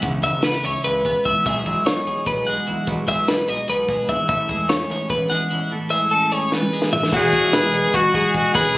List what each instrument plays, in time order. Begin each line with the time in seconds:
Already playing: clean electric guitar E3 E4
0.02 analog synth bass C#2, clean electric guitar C#3, kick, closed hi-hat
0.23 analog synth bass G#1, clean electric guitar B3 E5, kick, snare, closed hi-hat
0.42 clean electric guitar B3 B4, snare, closed hi-hat
0.54 clean electric guitar C#4
0.63 analog synth bass C#2, clean electric guitar E4 C#5, closed hi-hat
0.84 analog synth bass C#2, clean electric guitar G#2 B4, closed hi-hat
1.05 analog synth bass C#2, clean electric guitar B3, kick, closed hi-hat
1.25 analog synth bass C#2, clean electric guitar E3 E5, kick, closed hi-hat
1.46 analog synth bass B1, clean electric guitar B2 E3 G#3 G#4 E5, kick, closed hi-hat
1.66 analog synth bass B1, clean electric guitar G#3, kick, closed hi-hat
1.86 clean electric guitar D#4 C#5, snare, closed hi-hat
2.07 analog synth bass B1, clean electric guitar G#4, closed hi-hat
2.26 analog synth bass B1, clean electric guitar B2 B4, kick, closed hi-hat
2.47 analog synth bass B1, clean electric guitar G#3 F#5, closed hi-hat
2.67 analog synth bass B1, clean electric guitar E3, closed hi-hat
2.87 analog synth bass B1, clean electric guitar B2, kick, closed hi-hat
3.08 analog synth bass B1, clean electric guitar G#3 E5, kick, closed hi-hat
3.28 clean electric guitar D#4 B4, snare, closed hi-hat
3.48 analog synth bass B1, clean electric guitar G#4 D#5, closed hi-hat
3.68 analog synth bass B1, clean electric guitar B2 B4, closed hi-hat
3.89 analog synth bass B1, clean electric guitar G#3, kick, closed hi-hat
4.09 analog synth bass G#1, clean electric guitar E3 E5, kick, closed hi-hat
4.28 analog synth bass A1, clean electric guitar A2 E5, kick, closed hi-hat
4.49 analog synth bass E2, clean electric guitar G#3, kick, closed hi-hat
4.69 clean electric guitar C#4 C#5, snare, closed hi-hat
4.90 analog synth bass A1, clean electric guitar G#4, snare, closed hi-hat
5.10 analog synth bass A1, clean electric guitar E2 B4, kick, closed hi-hat
5.30 analog synth bass A1, clean electric guitar G#3 F#5, snare, closed hi-hat
5.50 analog synth bass A1, clean electric guitar E3, closed hi-hat
5.72 clean electric guitar A2
5.91 clean electric guitar G#3 E5
6.11 clean electric guitar C#4 A4
6.32 clean electric guitar G#4 C#5
6.52 clean electric guitar E2 B4, snare
6.62 high tom
6.73 clean electric guitar G#3
6.82 snare
6.93 clean electric guitar E3 E5, floor tom
7.03 snare
7.12 analog synth bass E1, clean electric guitar E2 E4 F#4, kick, crash
7.16 trumpet G#4
7.22 clean electric guitar F#4
7.33 clean electric guitar E3, kick, closed hi-hat
7.45 analog synth bass E1
7.53 clean electric guitar G#3 B4, snare, closed hi-hat
7.64 analog synth bass E1
7.73 clean electric guitar D#4, closed hi-hat
7.84 analog synth bass G#1
7.94 clean electric guitar D#4 F#4, trumpet F#4, kick, closed hi-hat
8.14 analog synth bass B1, clean electric guitar G#3 G#4, kick, closed hi-hat
8.34 analog synth bass E1, clean electric guitar D#4, trumpet F#4, kick, closed hi-hat
8.54 analog synth bass E1, clean electric guitar E2 C#4 B4, trumpet G#4, kick, closed hi-hat
8.75 clean electric guitar E3